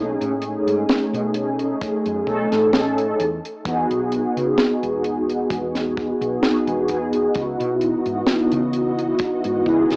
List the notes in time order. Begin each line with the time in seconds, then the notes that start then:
Already playing: B1 A3 C#4 D#4 G#4
0.21 A2, closed hi-hat
0.42 closed hi-hat
0.67 G#2, closed hi-hat
0.89 snare, closed hi-hat
1.13 B2, closed hi-hat
1.34 closed hi-hat
1.59 closed hi-hat
1.81 muted fretless electric bass stroke, kick, closed hi-hat
2.06 F#2, closed hi-hat
2.26 B1 A3 C#4 D#4 A4, kick
2.52 A1, snare, closed hi-hat
2.73 snare, closed hi-hat
2.98 closed hi-hat
3.20 E2, closed hi-hat
3.45 closed hi-hat
3.64 E2 B3 D#4 F#4 G#4, kick, closed hi-hat
3.91 B1, closed hi-hat
4.12 closed hi-hat
4.37 C#3, closed hi-hat
4.58 snare, closed hi-hat
4.83 E1, closed hi-hat
5.04 closed hi-hat
5.29 closed hi-hat
5.50 E1, kick, closed hi-hat
5.75 snare, closed hi-hat
5.97 kick
6.21 B1, closed hi-hat
6.42 B3 D#4 F#4 G#4, snare, closed hi-hat
6.67 E1, closed hi-hat
6.88 B3 D#4 F#4 G#4, kick, closed hi-hat
7.13 closed hi-hat
7.33 C#2 E3 B3 D#4 E4 F#4 D#5, kick, closed hi-hat
7.60 B2, closed hi-hat
7.81 closed hi-hat
8.06 G#2, closed hi-hat
8.27 snare, closed hi-hat
8.52 C#3, closed hi-hat
8.73 closed hi-hat
8.99 closed hi-hat
9.19 muted fretless electric bass stroke, kick, closed hi-hat
9.44 G#2, closed hi-hat
9.64 C#2 B3 D#4 E4 G#4, kick
9.90 B1, snare, closed hi-hat